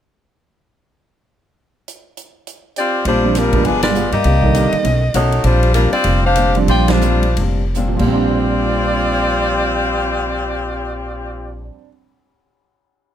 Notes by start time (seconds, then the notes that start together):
1.88 closed hi-hat
2.17 closed hi-hat
2.47 closed hi-hat
2.76 C4 F4 G4 D5, closed hi-hat
3.05 A#1 A#2 G3 C4 D4 F4 C5, ride
3.10 D4
3.24 F3 G3 C4 D4
3.35 A#2 G3 C4 D4 F4 A#4, snare, hi-hat pedal, ride
3.53 F3 G#3 B3 D4, kick, ride
3.65 G1 G3 G#3 B3 D4 F4 G#4 B4, ride
3.82 B3 F4 G#4 D5, snare, ride
3.95 G3 B3 F4 G#4, hi-hat pedal
4.12 G2 A#3 G4 D5 D#5, ride
4.24 C2 C3 D#3 A#3 D4, ride
4.43 D3 D#3 G3 A#3, kick
4.54 C3 D#3 A#3 D4, hi-hat pedal, ride
4.72 muted upright bass stroke, ride
4.83 B1 B2 D#3 A3 C#4, ride
5.14 B1 B2 D#3 A3 C#4 D#4 F#4 C#5, hi-hat pedal, ride
5.32 ride
5.44 A#1 A#2 G3 C4 D4 F4 C5, ride
5.63 ride
5.74 A#2 G3 C4 D4 F4 A#4, hi-hat pedal, ride
5.93 C4 F4 G4 D5, muted upright bass stroke, ride
6.04 F1 A#2 G3 C4, ride
6.08 D4
6.25 D4 G4 C5 F5
6.36 A#2 G3 C4 D4, hi-hat pedal, ride
6.55 F3 G3 C4 D4, ride
6.68 A#1 A#2 G3 C4 D4 F4 C5 D5 G5, ride
6.88 G3 D4 F4 C5, snare, ride
7.01 A#2 G3 C4 D4, hi-hat pedal
7.23 ride
7.37 F1 A#2 G3 C4, ride
7.41 D4
7.75 A#2 G3 C4 D4, hi-hat pedal
7.88 A#2
7.95 A#2 F3
7.99 A#1 G3 C4 F4 G4 D5, kick, crash
8.07 C4 D4
8.14 D4